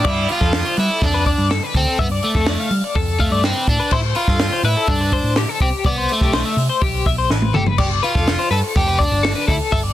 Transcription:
Already playing: G3 B3
0.04 G2 E4 D5, kick, crash
0.29 F4 B4, open hi-hat
0.41 F2 A4, kick, snare
0.53 snare, open hi-hat
0.65 C5
0.77 G3 E4 B4, open hi-hat
0.90 A4
1.02 F2 D4, kick, open hi-hat
1.14 B4
1.26 D5, kick, open hi-hat
1.38 G2
1.51 A4, snare, open hi-hat
1.63 B4
1.74 D2 C4 A4, kick, open hi-hat
1.99 G2 B3 E5, kick, open hi-hat
2.12 D5
2.23 A3, open hi-hat
2.35 F2 A4, kick, snare
2.46 D5, snare, open hi-hat
2.60 F5
2.70 G3, open hi-hat
2.84 D5
2.95 F2 A4, kick, open hi-hat
3.19 A3 F5, kick, open hi-hat
3.31 G2 D5
3.44 C4 B4, snare, open hi-hat
3.67 A2 D4 A4, kick, open hi-hat
3.80 B4
3.91 A2 E4 C5, kick, crash
4.15 F4 B4, open hi-hat
4.28 G2 A4, kick, snare
4.39 snare, open hi-hat
4.53 C5
4.63 A2 E4 B4, open hi-hat
4.77 A4
4.87 G2 D4, kick, open hi-hat
5.01 B4
5.12 C5, kick, open hi-hat
5.23 A2
5.36 G4, snare, open hi-hat
5.49 A4
5.60 C2 C4 G4, kick, open hi-hat
5.84 C2 B3 D5, kick, open hi-hat
5.98 C5
6.09 A3, open hi-hat
6.21 B1 G4, kick, snare
6.33 C5, snare, open hi-hat
6.46 E5
6.57 C3, open hi-hat
6.69 C5
6.81 B1 G4, kick, open hi-hat
7.06 B1 E5, kick, open hi-hat
7.18 C5
7.30 A1 B4, snare
7.42 high tom
7.54 G1 G4 A4, mid tom
7.66 B4, floor tom
7.78 G1 G4 D5, kick, crash
8.03 F4 B4, open hi-hat
8.15 F1 A4, kick, snare
8.27 snare, open hi-hat
8.39 C5
8.51 G2 A4 B4, open hi-hat
8.64 A4
8.75 F1 G4, kick, open hi-hat
8.88 B4
8.99 D4 D5, kick, open hi-hat
9.12 G1
9.23 A4, snare, open hi-hat
9.35 B4
9.47 D2 E4 A4, kick, open hi-hat
9.72 G1 A4 E5, kick, open hi-hat
9.83 D5

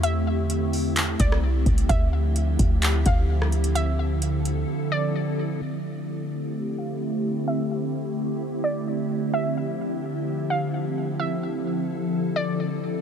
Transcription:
Already playing: E2 D3 A3 C4 E4 G4
0.03 E5, closed hi-hat
0.50 closed hi-hat
0.73 open hi-hat
0.96 clap, closed hi-hat
1.20 C2 D5, kick, closed hi-hat
1.32 cross-stick
1.66 C2, kick, closed hi-hat
1.78 closed hi-hat
1.89 D2 D3 F3 G4 E5, kick, closed hi-hat
2.36 closed hi-hat
2.59 D2, kick, closed hi-hat
2.82 clap, closed hi-hat
3.06 D2 F5, kick, closed hi-hat
3.42 cross-stick
3.52 closed hi-hat
3.64 closed hi-hat
3.75 A4 E5, closed hi-hat
4.22 closed hi-hat
4.45 closed hi-hat
4.92 D5
5.61 D3 A3 C4 E4 G4 E5
6.78 F5
7.48 E5
8.64 D5
9.34 F3 E5
10.50 F5
11.20 A4 E5
12.36 D5

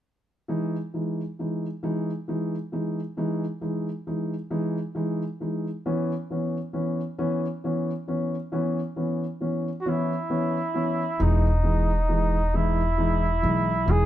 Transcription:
0.48 E3 G#3 D#4
0.94 E3 G#3 D#4
1.39 E3 G#3 D#4
1.83 E3 G#3 D#4
2.28 E3 G#3 D#4
2.72 E3 G#3 D#4
3.17 E3 G#3 D#4
3.61 E3 G#3 D#4
4.07 E3 G#3 D#4
4.51 E3 G#3 D#4
4.95 E3 G#3 D#4
5.40 E3 G#3 D#4
5.86 E3 B3 C#4
6.30 E3 B3 C#4
6.73 E3 B3 C#4
7.18 E3 B3 C#4
7.64 E3 B3 C#4
8.08 E3 B3 C#4
8.52 E3 B3 C#4
8.96 E3 B3 C#4
9.41 E3 B3 C#4
9.81 F#4
9.86 E3 B3 C#4 E4
10.30 E3 B3 C#4
10.74 E3 B3 C#4
11.19 E1 E3 G#3 D#4
11.63 E3 G#3 D#4
12.09 E3 G#3 D#4
12.54 E3 G#3 D#4 E4
12.98 E3 G#3 D#4
13.42 B1 E3 G#3 D#4
13.86 E1 E3 G#3 D#4
13.91 G#4

